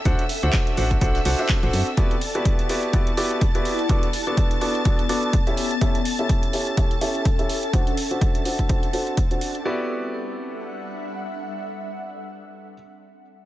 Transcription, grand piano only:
X:1
M:4/4
L:1/16
Q:"Swing 16ths" 1/4=125
K:Em
V:1 name="Grand piano"
[DFAcf] z2 [DFAcf]3 [DFAcf]2 [DFAcf] z [DFAcf] [DFAce]2 [DFAcf]2 z | [B,EFGd] z2 [B,EFGd]3 [B,EFGd]2 [B,EFGd] z [B,EFGd]2 z [B,EFGd]2 z | [B,DFAd] z2 [B,DFAd]3 [B,DFAd]2 [B,DFAd] z [B,DFAd]2 z [^CEGAe]2 z | [^CEGAe] z2 [CEGAe]3 [CEGAe]2 [CEGAe] z [CEGAe]2 z [CEGAe]2 z |
[DFAcf] z2 [DFAcf]3 [DFAcf]2 [DFAcf] z [DFAcf]2 z [DFAcf]2 z | [B,EFGd]16- | [B,EFGd]16 |]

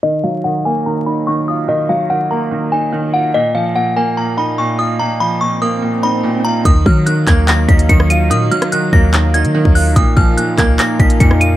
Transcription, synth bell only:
X:1
M:4/4
L:1/8
Q:1/4=145
K:Ebm
V:1 name="Synth bell"
e f g a b c' d' e' | e f g b2 a2 g | e f g a b c' d' e' | b c' d' e'2 c'2 b |
e' f' g' a' b' c'' d'' e'' | e' f' g' b'2 a'2 g' | e' f' g' a' b' c'' d'' e'' |]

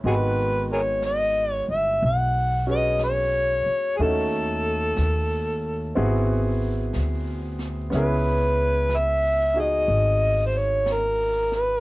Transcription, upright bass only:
X:1
M:4/4
L:1/8
Q:"Swing" 1/4=61
K:G#m
V:1 name="Upright bass" clef=bass
G,,,3 =G,,, B,,,3 z | D,,2 D,,2 G,,,2 =D,,2 | C,,4 G,,,4 |]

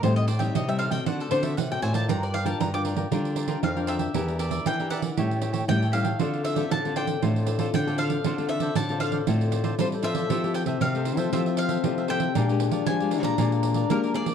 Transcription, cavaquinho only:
X:1
M:4/4
L:1/16
Q:1/4=117
K:Dm
V:1 name="Cavaquinho"
[Ac_eg]2 [Aceg] [ceg]2 [ceg] [Aceg] [ceg] [^FAcd]2 [FAcd] [FAcd] z [Acd] [FAcd] [Acd] | [FBdg]2 [FBdg] [Bdg]2 [Bdg] [FBdg] [Bdg] [FBdg]2 [FBdg] [FBdg] z [Bdg] [FBdg] [Bdg] | [GBde]2 [GBde] [Bde]2 [Bde] [GBde] [Bd] [GA^cg]2 [GAcg] [GAcg] z [Acg] [GAcg] [Acg] | [FAcd]2 [FAcd] [Acd]2 [Acd] [FAcd] A [FAcd]2 [FAcd] [FAcd] z [Acd] [FAcd] [Acd] |
[FAcd]2 [FAcd] [Acd]2 [Acd] [FAcd] [Acd] [FAcd]2 [FAcd] [FAcd] z [Acd] [FAcd] [Acd] | [K:F] [FAce] [Ace] z [Ace] z [Ace] [FAce] [Ace] [FAce] [Ace]2 [Ace]2 [Ace] [FAce] [Ace] | [_ABdf] [Bdf] z [Bdf] z [Bdf] [ABdf] [Bdf] [ABdf] [Bdf]2 [Bdf]2 [Bdf] [ABdf] [Bdf] |]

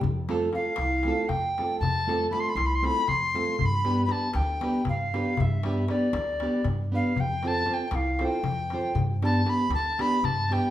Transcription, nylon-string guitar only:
X:1
M:7/8
L:1/8
Q:1/4=118
K:Gmix
V:1 name="Nylon-string guitar"
z [A,CFA] [CFA] z [A,CFA] z [A,CFA] | z [A,CFA] [A,CFA] z [A,CFA] z [A,CFA] | z [B,DGB] [B,DGB] z [B,DGB] z [B,DGB] | z [B,DGB] [B,DGB] z [B,DGB] z [B,DGB] |
z [CFAc] [CFAc] z [CFAc] z [CFAc] | z [B,DGB] [B,DGB] z [B,DGB] z [B,DGB] |]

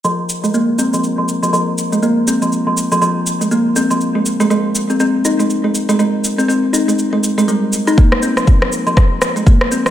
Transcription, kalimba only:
X:1
M:4/4
L:1/16
Q:"Swing 16ths" 1/4=121
K:Ab
V:1 name="Kalimba" clef=bass
F, z2 A, B, z C F, z F, z F, F, z2 A, | B, z C F, z F, z F, F, z2 A, B, z C F, | z A, z A, A, z2 C C z E A, z A, z A, | A, z2 C C z E A, z A, z A, G, z2 E |
B, z C F, z F, z F, F, z2 A, B, z C F, |]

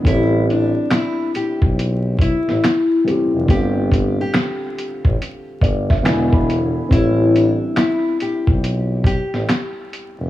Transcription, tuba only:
X:1
M:4/4
L:1/16
Q:"Swing 16ths" 1/4=70
K:Am
V:1 name="Tuba" clef=bass
A,,,4 z3 B,,,4 A,,, z3 F,,, | G,,,4 z3 A,,, z2 G,,,2 E,,,4 | A,,,4 z3 B,,,4 A,,, z3 F,,, |]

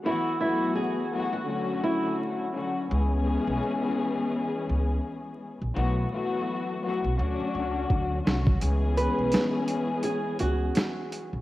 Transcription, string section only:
X:1
M:4/4
L:1/8
Q:"Swing 16ths" 1/4=84
K:C#phr
V:1 name="String section"
[E,F,A,B,F] [E,F,A,B,F]2 [E,F,A,B,F] [D,F,A,CF]3 [D,F,A,CF] | [E,G,B,CG]6- [E,G,B,CG] z | [E,F,A,B,F] [E,F,A,B,F]2 [E,F,A,B,F] [F,A,CDF]3 [D,F,A,CF] | [E,G,B,CG]6- [E,G,B,CG] z |]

